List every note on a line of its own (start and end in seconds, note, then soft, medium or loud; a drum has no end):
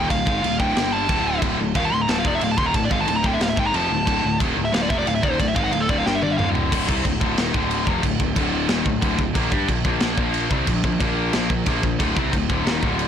0.00 0.10 D#3 loud
0.10 0.26 D1 medium
0.10 0.24 D2 medium
0.10 0.24 A2 medium
0.10 0.56 F5 medium
0.10 kick loud
0.10 crash medium
0.26 0.42 G#1 medium
0.26 0.42 G#2 medium
0.26 0.43 D#3 loud
0.26 0.43 G#3 loud
0.26 kick loud
0.43 0.59 D1 medium
0.43 0.57 D2 medium
0.43 0.57 A2 medium
0.43 crash medium
0.59 0.75 D1 loud
0.59 0.75 D2 loud
0.59 0.75 A2 loud
0.59 0.75 D3 loud
0.59 0.91 G5 medium
0.59 kick loud
0.75 1.07 G1 medium
0.75 1.08 G2 loud
0.75 1.08 D3 loud
0.75 1.09 G3 loud
0.75 snare loud
0.75 crash medium
0.93 1.39 A5 loud
1.08 1.40 D1 loud
1.08 1.41 D2 medium
1.08 1.41 A2 loud
1.08 1.42 D3 loud
1.08 kick loud
1.08 crash medium
1.42 1.58 D1 medium
1.42 1.58 D2 medium
1.42 1.58 A2 medium
1.42 1.59 D3 medium
1.42 kick loud
1.42 crash medium
1.59 1.74 D1 medium
1.59 1.72 D2 medium
1.59 1.72 A2 medium
1.75 1.91 D#1 loud
1.75 1.91 D#2 medium
1.75 1.91 A#2 loud
1.75 1.92 D#3 loud
1.75 1.84 F5 medium
1.75 kick loud
1.75 crash medium
1.85 1.94 A5 medium
1.92 2.08 D1 medium
1.92 2.05 D2 medium
1.92 2.05 A2 medium
1.92 2.01 C6 loud
2.02 2.09 A#5 loud
2.08 2.24 D1 loud
2.08 2.24 D2 medium
2.08 2.25 A2 loud
2.08 2.25 D3 medium
2.08 2.17 A5 medium
2.08 snare loud
2.08 crash medium
2.18 2.25 F5 medium
2.25 2.40 F1 loud
2.25 2.41 F2 medium
2.25 2.41 C3 medium
2.25 2.42 F3 loud
2.25 2.35 D5 medium
2.25 kick loud
2.35 2.42 E5 loud
2.41 2.57 D1 medium
2.41 2.55 D2 medium
2.41 2.55 A2 medium
2.41 2.51 F5 medium
2.41 crash medium
2.51 2.58 A5 medium
2.57 2.73 D#1 medium
2.57 2.74 D#2 loud
2.57 2.74 A#2 medium
2.57 2.74 D#3 loud
2.57 2.66 C6 loud
2.57 kick loud
2.66 2.76 A#5 loud
2.74 2.90 D1 medium
2.74 2.88 D2 medium
2.74 2.88 A2 medium
2.74 2.83 A5 medium
2.74 kick loud
2.74 crash medium
2.84 2.91 D5 medium
2.90 3.06 G#1 medium
2.90 3.07 G#2 loud
2.90 3.07 D#3 loud
2.90 3.07 G#3 medium
2.90 3.00 F5 medium
2.90 kick loud
3.01 3.08 A5 medium
3.07 3.23 D1 medium
3.07 3.21 D2 medium
3.07 3.21 A2 medium
3.07 3.16 A5 loud
3.07 crash medium
3.16 3.26 A#5 loud
3.23 3.40 D1 medium
3.23 3.38 D2 loud
3.23 3.39 A2 loud
3.23 3.40 D3 loud
3.23 3.33 G5 loud
3.23 kick loud
3.33 3.42 E5 medium
3.40 3.56 D1 medium
3.40 3.53 D2 medium
3.40 3.54 A2 medium
3.40 3.49 F5 loud
3.40 snare loud
3.40 crash medium
3.50 3.57 E5 loud
3.56 3.73 G#1 medium
3.56 3.72 G#2 medium
3.56 3.73 D#3 loud
3.56 3.73 G#3 loud
3.56 3.66 G5 loud
3.56 kick loud
3.67 3.74 A#5 loud
3.72 3.89 F1 loud
3.72 3.89 F2 medium
3.72 3.89 C3 loud
3.72 3.89 F3 loud
3.72 4.37 A5 medium
3.72 crash medium
3.90 4.06 D1 medium
3.90 4.03 D2 medium
3.90 4.03 A2 medium
4.05 4.22 D1 loud
4.05 4.21 D2 medium
4.05 4.22 A2 loud
4.05 4.23 D3 loud
4.05 kick loud
4.05 crash medium
4.23 4.39 D1 medium
4.23 4.36 D2 medium
4.23 4.36 A2 medium
4.39 4.55 D#1 medium
4.39 4.56 D#2 loud
4.39 4.56 A#2 loud
4.39 4.56 D#3 loud
4.39 kick loud
4.39 crash medium
4.56 4.72 D1 medium
4.56 4.70 D2 medium
4.56 4.70 A2 medium
4.65 4.73 E5 loud
4.72 4.88 D1 loud
4.72 4.89 D2 medium
4.72 4.89 A2 loud
4.72 4.89 D3 loud
4.72 4.82 F5 loud
4.72 snare loud
4.72 crash medium
4.83 4.89 D5 medium
4.89 5.05 F1 loud
4.89 5.05 F2 loud
4.89 5.05 C3 loud
4.89 5.06 F3 loud
4.89 4.98 E5 loud
4.89 kick loud
4.98 5.07 D5 loud
5.05 5.22 D1 medium
5.05 5.19 D2 medium
5.05 5.19 A2 medium
5.05 5.15 F5 loud
5.05 crash medium
5.15 5.23 E5 medium
5.22 5.38 D#1 medium
5.22 5.38 D#2 medium
5.22 5.38 A#2 medium
5.22 5.39 D#3 loud
5.22 5.31 D5 medium
5.22 kick loud
5.31 5.39 C5 medium
5.38 5.55 D1 medium
5.38 5.52 D2 medium
5.38 5.52 A2 medium
5.38 5.48 D5 medium
5.38 kick loud
5.38 crash medium
5.48 5.55 E5 medium
5.54 5.72 G#1 medium
5.54 5.71 G#2 loud
5.54 5.71 D#3 loud
5.54 5.72 G#3 loud
5.54 5.64 F5 loud
5.54 kick loud
5.64 5.73 F#5 loud
5.72 5.88 D1 medium
5.72 5.85 D2 medium
5.72 5.85 A2 medium
5.72 5.81 F5 loud
5.72 crash medium
5.80 5.88 A4 medium
5.88 6.04 D1 loud
5.88 6.04 D2 medium
5.88 6.05 A2 loud
5.88 6.05 D3 loud
5.88 5.97 D5 loud
5.88 kick loud
5.98 6.06 F5 medium
6.06 6.36 G1 loud
6.06 6.38 G2 loud
6.06 6.38 D3 loud
6.06 6.38 G3 loud
6.06 6.14 G5 loud
6.06 snare medium
6.15 6.22 E5 medium
6.23 6.31 D5 loud
6.23 high tom medium
6.31 6.37 E5 medium
6.38 6.70 D1 loud
6.38 6.70 D2 loud
6.38 6.70 A2 loud
6.38 6.71 D3 loud
6.38 6.48 F5 loud
6.38 mid tom loud
6.55 floor tom loud
6.71 6.87 D1 medium
6.71 6.87 D2 medium
6.71 6.87 A2 medium
6.71 6.88 D3 loud
6.71 kick loud
6.71 crash loud
6.71 crash medium
6.87 7.04 C2 medium
6.87 7.04 C3 medium
6.87 7.04 G3 medium
6.87 7.04 C4 medium
6.87 kick loud
7.04 7.20 D1 medium
7.04 7.17 D2 medium
7.04 7.17 A2 medium
7.04 kick medium
7.04 crash medium
7.20 7.37 D1 loud
7.20 7.36 D2 medium
7.20 7.37 A2 loud
7.20 7.37 D3 medium
7.20 kick loud
7.37 7.53 D#1 medium
7.37 7.53 D#2 loud
7.37 7.53 A#2 loud
7.37 7.54 D#3 loud
7.37 snare loud
7.37 crash medium
7.53 7.85 D1 medium
7.53 7.86 D2 medium
7.53 7.86 A2 loud
7.53 7.87 D3 loud
7.53 kick loud
7.71 crash medium
7.86 8.02 F1 medium
7.86 8.02 F2 loud
7.86 8.03 C3 medium
7.86 8.03 F3 loud
7.86 kick loud
8.03 8.19 D1 medium
8.03 8.17 D2 medium
8.03 8.17 A2 medium
8.03 kick loud
8.03 crash medium
8.20 8.35 D1 medium
8.20 8.33 D2 medium
8.20 8.33 A2 medium
8.20 kick loud
8.36 8.67 D1 medium
8.36 8.68 D2 loud
8.36 8.68 A2 loud
8.36 8.69 D3 loud
8.36 kick loud
8.36 crash medium
8.68 8.85 D#1 loud
8.68 8.85 D#2 medium
8.68 8.85 A#2 loud
8.68 8.85 D#3 loud
8.68 snare loud
8.68 crash medium
8.85 9.01 D1 medium
8.85 8.99 D2 medium
8.85 8.99 A2 medium
8.85 kick loud
9.01 9.18 D1 loud
9.01 9.17 D2 loud
9.01 9.18 A2 loud
9.01 9.18 D3 loud
9.01 kick loud
9.01 crash medium
9.19 9.34 D1 medium
9.19 9.32 D2 medium
9.19 9.32 A2 medium
9.19 kick loud
9.34 9.51 A#1 loud
9.34 9.51 A#2 loud
9.34 9.51 F3 medium
9.34 9.50 A#3 loud
9.34 kick loud
9.34 crash medium
9.51 9.67 G2 medium
9.51 9.67 G3 medium
9.51 9.68 D4 loud
9.51 9.68 G4 loud
9.51 kick loud
9.69 9.84 A#1 medium
9.69 9.82 A#2 medium
9.69 9.82 F3 medium
9.69 kick medium
9.69 crash medium
9.85 10.00 A#1 medium
9.85 10.00 A#2 loud
9.85 10.01 F3 loud
9.85 10.01 A#3 loud
9.85 kick loud
10.00 10.17 A#1 loud
10.00 10.16 A#2 loud
10.00 10.17 F3 loud
10.00 10.17 A#3 loud
10.00 snare loud
10.00 crash medium
10.17 10.49 A#1 loud
10.17 10.50 A#2 medium
10.17 10.51 F3 loud
10.17 10.51 A#3 loud
10.17 kick loud
10.34 crash medium
10.51 10.66 C2 medium
10.51 10.66 C3 medium
10.51 10.67 G3 loud
10.51 10.67 C4 loud
10.51 kick loud
10.67 10.83 A#1 medium
10.67 10.80 A#2 medium
10.67 10.81 F3 medium
10.67 kick medium
10.67 crash medium
10.84 10.99 A#1 medium
10.84 10.97 A#2 medium
10.84 10.97 F3 medium
10.84 kick medium
11.00 11.31 A#1 loud
11.00 11.31 A#2 medium
11.00 11.31 F3 loud
11.00 11.32 A#3 loud
11.00 kick loud
11.00 crash medium
11.32 11.49 A#1 loud
11.32 11.49 A#2 loud
11.32 11.49 F3 loud
11.32 11.49 A#3 loud
11.32 snare loud
11.32 crash medium
11.50 11.65 A#1 medium
11.50 11.63 A#2 medium
11.50 11.63 F3 medium
11.50 kick medium
11.66 11.82 A#1 loud
11.66 11.81 A#2 loud
11.66 11.82 F3 medium
11.66 11.83 A#3 loud
11.66 kick loud
11.66 crash medium
11.82 11.99 A#1 medium
11.82 11.96 A#2 medium
11.82 11.96 F3 medium
11.82 kick loud
11.99 12.15 D1 medium
11.99 12.15 D2 medium
11.99 12.15 A2 medium
11.99 12.16 D3 loud
11.99 kick loud
11.99 crash medium
12.16 12.32 C2 medium
12.16 12.32 C3 medium
12.16 12.32 G3 medium
12.16 12.32 C4 loud
12.16 kick loud
12.32 12.48 D1 medium
12.32 12.45 D2 medium
12.32 12.46 A2 medium
12.32 kick loud
12.32 crash medium
12.49 12.65 D1 medium
12.49 12.65 D2 loud
12.49 12.66 A2 medium
12.49 12.66 D3 loud
12.49 kick loud
12.66 12.81 D#1 loud
12.66 12.82 D#2 medium
12.66 12.82 A#2 medium
12.66 12.83 D#3 loud
12.66 snare loud
12.66 crash medium
12.82 13.08 D1 medium
12.82 13.08 D2 medium
12.82 13.08 A2 medium
12.82 13.08 D3 loud
12.82 kick loud
12.99 crash medium